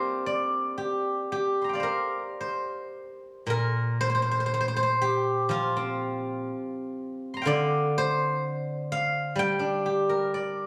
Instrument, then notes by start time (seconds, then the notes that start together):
guzheng
Already playing: F3 A#3 C4 D4 F4 G4 A#4 C5
0.26 D5
0.78 G4
1.32 G4
1.62 A#5 C6
1.69 G5
1.73 D5 F5
1.80 A#4 C5
2.41 C5
3.47 A#2 A#4
4.01 C5
4.10 C5
4.15 C5
4.22 C5
4.31 C5
4.40 C5
4.46 C5
4.54 C5
4.61 C5
4.68 C5
4.76 C5
4.83 C5
5.02 G4
5.49 F3 F4
5.77 C4
7.34 A#5 C6
7.42 D3 F5 G5
7.47 D5
7.98 C5
8.92 F5
9.36 G3 G5
9.59 D4
9.86 G4
10.09 A#4
10.34 D5